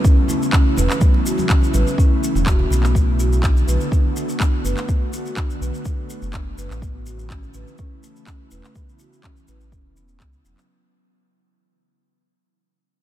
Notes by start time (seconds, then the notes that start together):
Already playing: C#3 E3 A3 E4
0.04 C#4, kick, muted conga, maracas
0.17 high conga
0.28 A3, muted conga, low conga, maracas
0.42 maracas
0.52 C#4, kick, clap, muted conga, maracas
0.76 E1 B4, muted conga, low conga, maracas
0.90 clap, maracas
1.00 B3, kick, high conga, maracas
1.14 muted conga
1.25 F#4, maracas
1.38 muted conga, high conga, maracas
1.50 C#4, kick, clap, high conga, maracas
1.62 muted conga, maracas
1.73 A1 B4, high conga, maracas
1.87 maracas
1.98 C#4, kick, muted conga, maracas
2.22 C#4, muted conga, maracas
2.35 E1, low conga, maracas
2.46 E1 F#4, kick, clap, muted conga, high conga, maracas
2.59 low conga
2.70 B1 B3, muted conga, low conga, maracas
2.83 clap, maracas
2.94 D3 B3 F#4, kick, maracas
3.19 F#4, maracas
3.33 maracas
3.43 D4, kick, clap, maracas
3.57 maracas
3.67 B1 B4, maracas
3.81 maracas
3.92 D4, kick, maracas
4.16 A3, maracas
4.29 maracas
4.40 D4, kick, clap, maracas
4.64 F#1 B4, maracas
4.77 clap, maracas
4.89 B3, kick, maracas
5.13 F#4, maracas
5.26 maracas
5.37 D4, kick, clap, maracas
5.50 maracas
5.61 B1 B4, maracas
5.74 maracas
5.85 D4, kick, maracas
6.09 A3, maracas
6.22 F#1, maracas
6.33 D4, kick, clap, maracas
6.58 F#1 B4, maracas
6.71 A1, clap, maracas
6.82 C#3 E3 A3 B3 E4, kick, maracas
7.06 F#4, maracas
7.19 maracas
7.30 C#4, kick, clap, maracas
7.43 maracas
7.54 A1 B4, maracas
7.68 maracas
7.78 C#4, kick, maracas
8.03 A3, maracas
8.16 maracas
8.27 C#4, kick, clap, maracas
8.51 E1 B4, maracas
8.64 clap, maracas
8.75 B3, kick, maracas
8.89 maracas
8.99 F#4, maracas
9.13 maracas
9.24 C#4, kick, clap, maracas
9.36 maracas
9.48 A1 B4, maracas
9.61 maracas
9.72 E1 C#4, kick, maracas
9.96 B3, maracas
10.08 maracas
10.20 C#2 B3, kick, clap, maracas
10.33 maracas
10.45 E1 F#3, maracas
10.57 clap, maracas